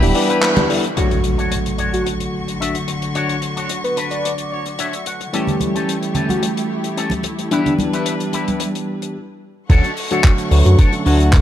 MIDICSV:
0, 0, Header, 1, 9, 480
1, 0, Start_track
1, 0, Key_signature, 2, "major"
1, 0, Tempo, 545455
1, 854, Time_signature, 4, 2, 24, 8
1, 10044, End_track
2, 0, Start_track
2, 0, Title_t, "Clean electric guitar"
2, 0, Program_c, 0, 27
2, 254, Note_on_c, 0, 64, 89
2, 262, Note_on_c, 0, 67, 69
2, 263, Note_on_c, 0, 71, 96
2, 554, Note_off_c, 0, 64, 0
2, 556, Note_off_c, 0, 67, 0
2, 558, Note_off_c, 0, 71, 0
2, 849, Note_on_c, 0, 62, 96
2, 852, Note_on_c, 0, 66, 88
2, 857, Note_on_c, 0, 73, 101
2, 1034, Note_off_c, 0, 62, 0
2, 1036, Note_off_c, 0, 66, 0
2, 1037, Note_off_c, 0, 73, 0
2, 1214, Note_on_c, 0, 62, 73
2, 1220, Note_on_c, 0, 66, 59
2, 1221, Note_on_c, 0, 73, 83
2, 1394, Note_off_c, 0, 62, 0
2, 1395, Note_off_c, 0, 66, 0
2, 1397, Note_off_c, 0, 73, 0
2, 1566, Note_on_c, 0, 62, 79
2, 1575, Note_on_c, 0, 73, 85
2, 1577, Note_on_c, 0, 66, 61
2, 1874, Note_off_c, 0, 62, 0
2, 1876, Note_off_c, 0, 66, 0
2, 1877, Note_off_c, 0, 73, 0
2, 2290, Note_on_c, 0, 62, 77
2, 2296, Note_on_c, 0, 76, 81
2, 2298, Note_on_c, 0, 66, 60
2, 2419, Note_off_c, 0, 62, 0
2, 2420, Note_off_c, 0, 66, 0
2, 2421, Note_off_c, 0, 76, 0
2, 2773, Note_on_c, 0, 62, 100
2, 2779, Note_on_c, 0, 66, 79
2, 2779, Note_on_c, 0, 73, 105
2, 2957, Note_off_c, 0, 62, 0
2, 2958, Note_off_c, 0, 66, 0
2, 2959, Note_off_c, 0, 73, 0
2, 3136, Note_on_c, 0, 62, 75
2, 3143, Note_on_c, 0, 66, 59
2, 3144, Note_on_c, 0, 73, 85
2, 3316, Note_off_c, 0, 62, 0
2, 3317, Note_off_c, 0, 66, 0
2, 3318, Note_off_c, 0, 73, 0
2, 3494, Note_on_c, 0, 62, 78
2, 3500, Note_on_c, 0, 66, 63
2, 3501, Note_on_c, 0, 71, 88
2, 3797, Note_off_c, 0, 62, 0
2, 3798, Note_off_c, 0, 66, 0
2, 3800, Note_off_c, 0, 71, 0
2, 3978, Note_on_c, 0, 73, 65
2, 4098, Note_off_c, 0, 73, 0
2, 4212, Note_on_c, 0, 62, 77
2, 4214, Note_on_c, 0, 66, 72
2, 4221, Note_on_c, 0, 73, 79
2, 4223, Note_on_c, 0, 76, 59
2, 4339, Note_off_c, 0, 62, 0
2, 4341, Note_off_c, 0, 66, 0
2, 4342, Note_off_c, 0, 73, 0
2, 4439, Note_off_c, 0, 76, 0
2, 4463, Note_on_c, 0, 78, 61
2, 4679, Note_off_c, 0, 78, 0
2, 4694, Note_on_c, 0, 61, 95
2, 4699, Note_on_c, 0, 67, 76
2, 4700, Note_on_c, 0, 69, 108
2, 4877, Note_off_c, 0, 61, 0
2, 4878, Note_off_c, 0, 67, 0
2, 4880, Note_off_c, 0, 69, 0
2, 5060, Note_on_c, 0, 61, 81
2, 5063, Note_on_c, 0, 67, 72
2, 5067, Note_on_c, 0, 69, 88
2, 5236, Note_off_c, 0, 61, 0
2, 5238, Note_off_c, 0, 67, 0
2, 5240, Note_off_c, 0, 69, 0
2, 5412, Note_on_c, 0, 61, 78
2, 5413, Note_on_c, 0, 67, 77
2, 5420, Note_on_c, 0, 69, 85
2, 5716, Note_off_c, 0, 61, 0
2, 5717, Note_off_c, 0, 67, 0
2, 5718, Note_off_c, 0, 69, 0
2, 6135, Note_on_c, 0, 61, 81
2, 6139, Note_on_c, 0, 67, 64
2, 6141, Note_on_c, 0, 69, 87
2, 6260, Note_off_c, 0, 61, 0
2, 6261, Note_off_c, 0, 67, 0
2, 6263, Note_off_c, 0, 69, 0
2, 6615, Note_on_c, 0, 64, 104
2, 6617, Note_on_c, 0, 67, 90
2, 6623, Note_on_c, 0, 71, 98
2, 6797, Note_off_c, 0, 64, 0
2, 6799, Note_off_c, 0, 67, 0
2, 6799, Note_off_c, 0, 71, 0
2, 6981, Note_on_c, 0, 67, 78
2, 6983, Note_on_c, 0, 64, 76
2, 6985, Note_on_c, 0, 71, 92
2, 7157, Note_off_c, 0, 64, 0
2, 7158, Note_off_c, 0, 67, 0
2, 7159, Note_off_c, 0, 71, 0
2, 7336, Note_on_c, 0, 64, 68
2, 7336, Note_on_c, 0, 67, 70
2, 7340, Note_on_c, 0, 71, 89
2, 7637, Note_off_c, 0, 64, 0
2, 7638, Note_off_c, 0, 67, 0
2, 7640, Note_off_c, 0, 71, 0
2, 8530, Note_on_c, 0, 62, 102
2, 8535, Note_on_c, 0, 69, 90
2, 8538, Note_on_c, 0, 66, 78
2, 8541, Note_on_c, 0, 73, 90
2, 8715, Note_off_c, 0, 62, 0
2, 8717, Note_off_c, 0, 66, 0
2, 8718, Note_off_c, 0, 69, 0
2, 8719, Note_off_c, 0, 73, 0
2, 8898, Note_on_c, 0, 62, 95
2, 8903, Note_on_c, 0, 69, 84
2, 8904, Note_on_c, 0, 66, 69
2, 8908, Note_on_c, 0, 73, 96
2, 9076, Note_off_c, 0, 62, 0
2, 9077, Note_off_c, 0, 66, 0
2, 9078, Note_off_c, 0, 69, 0
2, 9079, Note_off_c, 0, 73, 0
2, 9491, Note_on_c, 0, 62, 97
2, 9496, Note_on_c, 0, 69, 82
2, 9497, Note_on_c, 0, 66, 76
2, 9502, Note_on_c, 0, 73, 87
2, 9619, Note_off_c, 0, 62, 0
2, 9620, Note_off_c, 0, 66, 0
2, 9621, Note_off_c, 0, 69, 0
2, 9622, Note_off_c, 0, 73, 0
2, 10044, End_track
3, 0, Start_track
3, 0, Title_t, "String section"
3, 0, Program_c, 1, 48
3, 0, Note_on_c, 1, 55, 82
3, 0, Note_on_c, 1, 67, 73
3, 0, Note_on_c, 1, 76, 74
3, 0, Note_on_c, 1, 83, 91
3, 834, Note_off_c, 1, 76, 0
3, 835, Note_off_c, 1, 55, 0
3, 835, Note_off_c, 1, 67, 0
3, 835, Note_off_c, 1, 83, 0
3, 851, Note_on_c, 1, 66, 64
3, 852, Note_on_c, 1, 85, 78
3, 853, Note_on_c, 1, 50, 71
3, 4657, Note_off_c, 1, 66, 0
3, 4658, Note_off_c, 1, 50, 0
3, 4694, Note_on_c, 1, 57, 73
3, 4696, Note_on_c, 1, 64, 65
3, 4697, Note_on_c, 1, 67, 66
3, 6577, Note_off_c, 1, 85, 0
3, 6594, Note_off_c, 1, 57, 0
3, 6596, Note_off_c, 1, 67, 0
3, 6612, Note_on_c, 1, 62, 69
3, 6612, Note_on_c, 1, 71, 81
3, 6613, Note_on_c, 1, 55, 76
3, 8021, Note_off_c, 1, 64, 0
3, 8038, Note_off_c, 1, 62, 0
3, 8038, Note_off_c, 1, 71, 0
3, 8039, Note_off_c, 1, 55, 0
3, 8532, Note_on_c, 1, 69, 82
3, 8532, Note_on_c, 1, 85, 90
3, 8533, Note_on_c, 1, 78, 76
3, 10044, Note_off_c, 1, 69, 0
3, 10044, Note_off_c, 1, 78, 0
3, 10044, Note_off_c, 1, 85, 0
3, 10044, End_track
4, 0, Start_track
4, 0, Title_t, "Soft synth lead"
4, 0, Program_c, 2, 80
4, 1699, Note_on_c, 2, 66, 88
4, 1820, Note_off_c, 2, 66, 0
4, 3379, Note_on_c, 2, 71, 86
4, 3500, Note_off_c, 2, 71, 0
4, 3615, Note_on_c, 2, 74, 94
4, 4287, Note_off_c, 2, 74, 0
4, 5538, Note_on_c, 2, 66, 89
4, 5660, Note_off_c, 2, 66, 0
4, 6610, Note_on_c, 2, 62, 84
4, 6692, Note_off_c, 2, 62, 0
4, 6741, Note_on_c, 2, 62, 75
4, 6813, Note_off_c, 2, 62, 0
4, 9374, Note_on_c, 2, 66, 94
4, 9498, Note_off_c, 2, 66, 0
4, 10044, End_track
5, 0, Start_track
5, 0, Title_t, "Tine electric piano"
5, 0, Program_c, 3, 4
5, 11, Note_on_c, 3, 52, 78
5, 14, Note_on_c, 3, 55, 71
5, 18, Note_on_c, 3, 59, 70
5, 19, Note_on_c, 3, 62, 71
5, 20, Note_on_c, 3, 67, 84
5, 106, Note_off_c, 3, 52, 0
5, 108, Note_off_c, 3, 55, 0
5, 110, Note_off_c, 3, 59, 0
5, 110, Note_off_c, 3, 62, 0
5, 111, Note_off_c, 3, 67, 0
5, 127, Note_on_c, 3, 52, 94
5, 128, Note_on_c, 3, 55, 88
5, 132, Note_on_c, 3, 59, 86
5, 132, Note_on_c, 3, 62, 89
5, 135, Note_on_c, 3, 67, 104
5, 466, Note_off_c, 3, 52, 0
5, 466, Note_off_c, 3, 55, 0
5, 468, Note_off_c, 3, 59, 0
5, 468, Note_off_c, 3, 62, 0
5, 470, Note_off_c, 3, 67, 0
5, 494, Note_on_c, 3, 52, 81
5, 496, Note_on_c, 3, 55, 73
5, 498, Note_on_c, 3, 59, 71
5, 499, Note_on_c, 3, 62, 74
5, 502, Note_on_c, 3, 64, 86
5, 583, Note_off_c, 3, 52, 0
5, 584, Note_off_c, 3, 55, 0
5, 585, Note_off_c, 3, 59, 0
5, 586, Note_off_c, 3, 62, 0
5, 587, Note_off_c, 3, 64, 0
5, 607, Note_on_c, 3, 52, 80
5, 609, Note_on_c, 3, 55, 74
5, 613, Note_on_c, 3, 59, 75
5, 614, Note_on_c, 3, 62, 75
5, 616, Note_on_c, 3, 69, 91
5, 734, Note_off_c, 3, 52, 0
5, 734, Note_off_c, 3, 55, 0
5, 736, Note_off_c, 3, 59, 0
5, 737, Note_off_c, 3, 62, 0
5, 738, Note_off_c, 3, 69, 0
5, 844, Note_on_c, 3, 50, 66
5, 850, Note_on_c, 3, 54, 58
5, 855, Note_on_c, 3, 57, 60
5, 858, Note_on_c, 3, 69, 60
5, 863, Note_on_c, 3, 66, 70
5, 4661, Note_off_c, 3, 50, 0
5, 4664, Note_off_c, 3, 54, 0
5, 4667, Note_off_c, 3, 57, 0
5, 4668, Note_off_c, 3, 69, 0
5, 4671, Note_off_c, 3, 66, 0
5, 4688, Note_on_c, 3, 52, 67
5, 4692, Note_on_c, 3, 55, 61
5, 4697, Note_on_c, 3, 57, 61
5, 4700, Note_on_c, 3, 61, 61
5, 4706, Note_on_c, 3, 67, 75
5, 6583, Note_off_c, 3, 52, 0
5, 6585, Note_off_c, 3, 55, 0
5, 6588, Note_off_c, 3, 57, 0
5, 6589, Note_off_c, 3, 61, 0
5, 6592, Note_off_c, 3, 67, 0
5, 6606, Note_on_c, 3, 52, 70
5, 6610, Note_on_c, 3, 55, 63
5, 6613, Note_on_c, 3, 59, 62
5, 6618, Note_on_c, 3, 62, 63
5, 6622, Note_on_c, 3, 67, 76
5, 8050, Note_off_c, 3, 52, 0
5, 8051, Note_off_c, 3, 55, 0
5, 8053, Note_off_c, 3, 59, 0
5, 8056, Note_off_c, 3, 62, 0
5, 8058, Note_off_c, 3, 67, 0
5, 8530, Note_on_c, 3, 50, 88
5, 8533, Note_on_c, 3, 54, 80
5, 8536, Note_on_c, 3, 57, 79
5, 8537, Note_on_c, 3, 61, 78
5, 8540, Note_on_c, 3, 66, 97
5, 8655, Note_off_c, 3, 50, 0
5, 8657, Note_off_c, 3, 54, 0
5, 8658, Note_off_c, 3, 57, 0
5, 8659, Note_off_c, 3, 61, 0
5, 8660, Note_off_c, 3, 66, 0
5, 8895, Note_on_c, 3, 50, 92
5, 8896, Note_on_c, 3, 54, 82
5, 8899, Note_on_c, 3, 57, 83
5, 8903, Note_on_c, 3, 73, 84
5, 8904, Note_on_c, 3, 66, 99
5, 9223, Note_off_c, 3, 50, 0
5, 9224, Note_off_c, 3, 54, 0
5, 9226, Note_off_c, 3, 57, 0
5, 9227, Note_off_c, 3, 73, 0
5, 9228, Note_off_c, 3, 66, 0
5, 9248, Note_on_c, 3, 54, 70
5, 9249, Note_on_c, 3, 50, 75
5, 9252, Note_on_c, 3, 57, 69
5, 9254, Note_on_c, 3, 73, 71
5, 9257, Note_on_c, 3, 71, 83
5, 9587, Note_off_c, 3, 50, 0
5, 9587, Note_off_c, 3, 54, 0
5, 9588, Note_off_c, 3, 57, 0
5, 9589, Note_off_c, 3, 73, 0
5, 9591, Note_off_c, 3, 71, 0
5, 9613, Note_on_c, 3, 50, 78
5, 9617, Note_on_c, 3, 54, 70
5, 9620, Note_on_c, 3, 57, 73
5, 9621, Note_on_c, 3, 61, 70
5, 9622, Note_on_c, 3, 66, 84
5, 9707, Note_off_c, 3, 50, 0
5, 9709, Note_off_c, 3, 54, 0
5, 9711, Note_off_c, 3, 57, 0
5, 9711, Note_off_c, 3, 61, 0
5, 9711, Note_off_c, 3, 66, 0
5, 9729, Note_on_c, 3, 50, 96
5, 9731, Note_on_c, 3, 54, 89
5, 9733, Note_on_c, 3, 57, 91
5, 9736, Note_on_c, 3, 73, 90
5, 9738, Note_on_c, 3, 66, 109
5, 10044, Note_off_c, 3, 50, 0
5, 10044, Note_off_c, 3, 54, 0
5, 10044, Note_off_c, 3, 57, 0
5, 10044, Note_off_c, 3, 66, 0
5, 10044, Note_off_c, 3, 73, 0
5, 10044, End_track
6, 0, Start_track
6, 0, Title_t, "Analog synth bass"
6, 0, Program_c, 4, 38
6, 21, Note_on_c, 4, 26, 95
6, 108, Note_off_c, 4, 26, 0
6, 8534, Note_on_c, 4, 38, 96
6, 8631, Note_off_c, 4, 38, 0
6, 9251, Note_on_c, 4, 38, 95
6, 9349, Note_off_c, 4, 38, 0
6, 9378, Note_on_c, 4, 42, 94
6, 9466, Note_off_c, 4, 42, 0
6, 9730, Note_on_c, 4, 38, 105
6, 10044, Note_off_c, 4, 38, 0
6, 10044, End_track
7, 0, Start_track
7, 0, Title_t, "Impact"
7, 0, Program_c, 5, 103
7, 852, Note_on_c, 5, 60, 63
7, 2773, Note_off_c, 5, 60, 0
7, 10044, End_track
8, 0, Start_track
8, 0, Title_t, "Muted clean electric guitar strokes"
8, 2176, Note_on_c, 9, 29, 29
8, 2264, Note_off_c, 9, 29, 0
8, 2533, Note_on_c, 9, 29, 28
8, 2621, Note_off_c, 9, 29, 0
8, 2659, Note_on_c, 9, 29, 29
8, 2747, Note_off_c, 9, 29, 0
8, 4102, Note_on_c, 9, 29, 28
8, 4190, Note_off_c, 9, 29, 0
8, 4454, Note_on_c, 9, 29, 28
8, 4542, Note_off_c, 9, 29, 0
8, 4582, Note_on_c, 9, 29, 30
8, 4670, Note_off_c, 9, 29, 0
8, 6019, Note_on_c, 9, 29, 30
8, 6107, Note_off_c, 9, 29, 0
8, 6372, Note_on_c, 9, 29, 30
8, 6460, Note_off_c, 9, 29, 0
8, 6502, Note_on_c, 9, 29, 29
8, 6590, Note_off_c, 9, 29, 0
8, 7938, Note_on_c, 9, 29, 30
8, 8026, Note_off_c, 9, 29, 0
8, 9254, Note_on_c, 9, 29, 37
8, 9342, Note_off_c, 9, 29, 0
8, 9736, Note_on_c, 9, 29, 34
8, 9824, Note_off_c, 9, 29, 0
8, 10044, End_track
9, 0, Start_track
9, 0, Title_t, "Drums"
9, 22, Note_on_c, 9, 46, 65
9, 110, Note_off_c, 9, 46, 0
9, 129, Note_on_c, 9, 46, 103
9, 217, Note_off_c, 9, 46, 0
9, 264, Note_on_c, 9, 42, 53
9, 352, Note_off_c, 9, 42, 0
9, 371, Note_on_c, 9, 39, 127
9, 381, Note_on_c, 9, 42, 94
9, 459, Note_off_c, 9, 39, 0
9, 469, Note_off_c, 9, 42, 0
9, 496, Note_on_c, 9, 64, 82
9, 499, Note_on_c, 9, 42, 56
9, 499, Note_on_c, 9, 62, 72
9, 499, Note_on_c, 9, 63, 91
9, 584, Note_off_c, 9, 64, 0
9, 587, Note_off_c, 9, 42, 0
9, 587, Note_off_c, 9, 62, 0
9, 587, Note_off_c, 9, 63, 0
9, 616, Note_on_c, 9, 46, 109
9, 704, Note_off_c, 9, 46, 0
9, 741, Note_on_c, 9, 42, 61
9, 829, Note_off_c, 9, 42, 0
9, 853, Note_on_c, 9, 42, 88
9, 941, Note_off_c, 9, 42, 0
9, 979, Note_on_c, 9, 42, 46
9, 1067, Note_off_c, 9, 42, 0
9, 1089, Note_on_c, 9, 42, 66
9, 1177, Note_off_c, 9, 42, 0
9, 1222, Note_on_c, 9, 42, 46
9, 1310, Note_off_c, 9, 42, 0
9, 1334, Note_on_c, 9, 42, 98
9, 1422, Note_off_c, 9, 42, 0
9, 1461, Note_on_c, 9, 42, 50
9, 1549, Note_off_c, 9, 42, 0
9, 1570, Note_on_c, 9, 42, 66
9, 1658, Note_off_c, 9, 42, 0
9, 1704, Note_on_c, 9, 42, 52
9, 1792, Note_off_c, 9, 42, 0
9, 1816, Note_on_c, 9, 42, 82
9, 1904, Note_off_c, 9, 42, 0
9, 1940, Note_on_c, 9, 42, 49
9, 2028, Note_off_c, 9, 42, 0
9, 2185, Note_on_c, 9, 42, 52
9, 2273, Note_off_c, 9, 42, 0
9, 2305, Note_on_c, 9, 42, 92
9, 2393, Note_off_c, 9, 42, 0
9, 2419, Note_on_c, 9, 42, 52
9, 2507, Note_off_c, 9, 42, 0
9, 2534, Note_on_c, 9, 42, 72
9, 2622, Note_off_c, 9, 42, 0
9, 2659, Note_on_c, 9, 42, 47
9, 2747, Note_off_c, 9, 42, 0
9, 2772, Note_on_c, 9, 42, 75
9, 2860, Note_off_c, 9, 42, 0
9, 2898, Note_on_c, 9, 42, 52
9, 2986, Note_off_c, 9, 42, 0
9, 3009, Note_on_c, 9, 42, 72
9, 3097, Note_off_c, 9, 42, 0
9, 3142, Note_on_c, 9, 42, 52
9, 3230, Note_off_c, 9, 42, 0
9, 3251, Note_on_c, 9, 42, 94
9, 3339, Note_off_c, 9, 42, 0
9, 3383, Note_on_c, 9, 42, 47
9, 3471, Note_off_c, 9, 42, 0
9, 3494, Note_on_c, 9, 42, 75
9, 3582, Note_off_c, 9, 42, 0
9, 3617, Note_on_c, 9, 42, 49
9, 3705, Note_off_c, 9, 42, 0
9, 3742, Note_on_c, 9, 42, 83
9, 3830, Note_off_c, 9, 42, 0
9, 3856, Note_on_c, 9, 42, 53
9, 3944, Note_off_c, 9, 42, 0
9, 4098, Note_on_c, 9, 42, 48
9, 4186, Note_off_c, 9, 42, 0
9, 4213, Note_on_c, 9, 42, 97
9, 4301, Note_off_c, 9, 42, 0
9, 4341, Note_on_c, 9, 42, 53
9, 4429, Note_off_c, 9, 42, 0
9, 4454, Note_on_c, 9, 42, 68
9, 4542, Note_off_c, 9, 42, 0
9, 4582, Note_on_c, 9, 42, 46
9, 4670, Note_off_c, 9, 42, 0
9, 4695, Note_on_c, 9, 42, 86
9, 4783, Note_off_c, 9, 42, 0
9, 4816, Note_on_c, 9, 64, 67
9, 4826, Note_on_c, 9, 42, 47
9, 4904, Note_off_c, 9, 64, 0
9, 4914, Note_off_c, 9, 42, 0
9, 4932, Note_on_c, 9, 63, 91
9, 4935, Note_on_c, 9, 42, 64
9, 5020, Note_off_c, 9, 63, 0
9, 5023, Note_off_c, 9, 42, 0
9, 5067, Note_on_c, 9, 42, 52
9, 5155, Note_off_c, 9, 42, 0
9, 5182, Note_on_c, 9, 42, 93
9, 5270, Note_off_c, 9, 42, 0
9, 5303, Note_on_c, 9, 42, 46
9, 5391, Note_off_c, 9, 42, 0
9, 5408, Note_on_c, 9, 64, 70
9, 5411, Note_on_c, 9, 42, 65
9, 5496, Note_off_c, 9, 64, 0
9, 5499, Note_off_c, 9, 42, 0
9, 5536, Note_on_c, 9, 63, 62
9, 5545, Note_on_c, 9, 42, 49
9, 5624, Note_off_c, 9, 63, 0
9, 5633, Note_off_c, 9, 42, 0
9, 5656, Note_on_c, 9, 42, 88
9, 5744, Note_off_c, 9, 42, 0
9, 5785, Note_on_c, 9, 42, 54
9, 5873, Note_off_c, 9, 42, 0
9, 6019, Note_on_c, 9, 42, 51
9, 6107, Note_off_c, 9, 42, 0
9, 6138, Note_on_c, 9, 42, 82
9, 6226, Note_off_c, 9, 42, 0
9, 6246, Note_on_c, 9, 62, 56
9, 6257, Note_on_c, 9, 63, 86
9, 6259, Note_on_c, 9, 42, 52
9, 6334, Note_off_c, 9, 62, 0
9, 6345, Note_off_c, 9, 63, 0
9, 6347, Note_off_c, 9, 42, 0
9, 6365, Note_on_c, 9, 62, 47
9, 6370, Note_on_c, 9, 42, 75
9, 6453, Note_off_c, 9, 62, 0
9, 6458, Note_off_c, 9, 42, 0
9, 6500, Note_on_c, 9, 42, 54
9, 6588, Note_off_c, 9, 42, 0
9, 6611, Note_on_c, 9, 42, 85
9, 6699, Note_off_c, 9, 42, 0
9, 6740, Note_on_c, 9, 64, 62
9, 6742, Note_on_c, 9, 42, 50
9, 6828, Note_off_c, 9, 64, 0
9, 6830, Note_off_c, 9, 42, 0
9, 6851, Note_on_c, 9, 63, 92
9, 6860, Note_on_c, 9, 42, 58
9, 6939, Note_off_c, 9, 63, 0
9, 6948, Note_off_c, 9, 42, 0
9, 6982, Note_on_c, 9, 42, 55
9, 7070, Note_off_c, 9, 42, 0
9, 7092, Note_on_c, 9, 42, 91
9, 7180, Note_off_c, 9, 42, 0
9, 7219, Note_on_c, 9, 42, 47
9, 7307, Note_off_c, 9, 42, 0
9, 7330, Note_on_c, 9, 62, 30
9, 7332, Note_on_c, 9, 42, 69
9, 7418, Note_off_c, 9, 62, 0
9, 7420, Note_off_c, 9, 42, 0
9, 7460, Note_on_c, 9, 42, 49
9, 7465, Note_on_c, 9, 63, 67
9, 7548, Note_off_c, 9, 42, 0
9, 7553, Note_off_c, 9, 63, 0
9, 7567, Note_on_c, 9, 42, 88
9, 7655, Note_off_c, 9, 42, 0
9, 7702, Note_on_c, 9, 42, 53
9, 7790, Note_off_c, 9, 42, 0
9, 7939, Note_on_c, 9, 42, 53
9, 8027, Note_off_c, 9, 42, 0
9, 8533, Note_on_c, 9, 36, 120
9, 8533, Note_on_c, 9, 49, 91
9, 8540, Note_on_c, 9, 42, 89
9, 8541, Note_on_c, 9, 82, 58
9, 8621, Note_off_c, 9, 36, 0
9, 8621, Note_off_c, 9, 49, 0
9, 8628, Note_off_c, 9, 42, 0
9, 8629, Note_off_c, 9, 82, 0
9, 8659, Note_on_c, 9, 42, 53
9, 8747, Note_off_c, 9, 42, 0
9, 8772, Note_on_c, 9, 46, 100
9, 8774, Note_on_c, 9, 82, 88
9, 8860, Note_off_c, 9, 46, 0
9, 8862, Note_off_c, 9, 82, 0
9, 8894, Note_on_c, 9, 42, 62
9, 8908, Note_on_c, 9, 82, 53
9, 8982, Note_off_c, 9, 42, 0
9, 8996, Note_off_c, 9, 82, 0
9, 9010, Note_on_c, 9, 39, 127
9, 9013, Note_on_c, 9, 36, 122
9, 9014, Note_on_c, 9, 42, 109
9, 9021, Note_on_c, 9, 82, 66
9, 9098, Note_off_c, 9, 39, 0
9, 9101, Note_off_c, 9, 36, 0
9, 9102, Note_off_c, 9, 42, 0
9, 9109, Note_off_c, 9, 82, 0
9, 9136, Note_on_c, 9, 42, 62
9, 9143, Note_on_c, 9, 82, 48
9, 9224, Note_off_c, 9, 42, 0
9, 9231, Note_off_c, 9, 82, 0
9, 9252, Note_on_c, 9, 82, 87
9, 9253, Note_on_c, 9, 46, 108
9, 9340, Note_off_c, 9, 82, 0
9, 9341, Note_off_c, 9, 46, 0
9, 9377, Note_on_c, 9, 82, 52
9, 9382, Note_on_c, 9, 42, 59
9, 9465, Note_off_c, 9, 82, 0
9, 9470, Note_off_c, 9, 42, 0
9, 9492, Note_on_c, 9, 42, 106
9, 9493, Note_on_c, 9, 36, 121
9, 9495, Note_on_c, 9, 82, 64
9, 9580, Note_off_c, 9, 42, 0
9, 9581, Note_off_c, 9, 36, 0
9, 9583, Note_off_c, 9, 82, 0
9, 9615, Note_on_c, 9, 42, 59
9, 9623, Note_on_c, 9, 82, 49
9, 9703, Note_off_c, 9, 42, 0
9, 9711, Note_off_c, 9, 82, 0
9, 9732, Note_on_c, 9, 46, 108
9, 9735, Note_on_c, 9, 82, 88
9, 9820, Note_off_c, 9, 46, 0
9, 9823, Note_off_c, 9, 82, 0
9, 9858, Note_on_c, 9, 42, 58
9, 9859, Note_on_c, 9, 82, 51
9, 9946, Note_off_c, 9, 42, 0
9, 9947, Note_off_c, 9, 82, 0
9, 9969, Note_on_c, 9, 39, 124
9, 9972, Note_on_c, 9, 36, 119
9, 9972, Note_on_c, 9, 42, 103
9, 9973, Note_on_c, 9, 82, 63
9, 10044, Note_off_c, 9, 36, 0
9, 10044, Note_off_c, 9, 39, 0
9, 10044, Note_off_c, 9, 42, 0
9, 10044, Note_off_c, 9, 82, 0
9, 10044, End_track
0, 0, End_of_file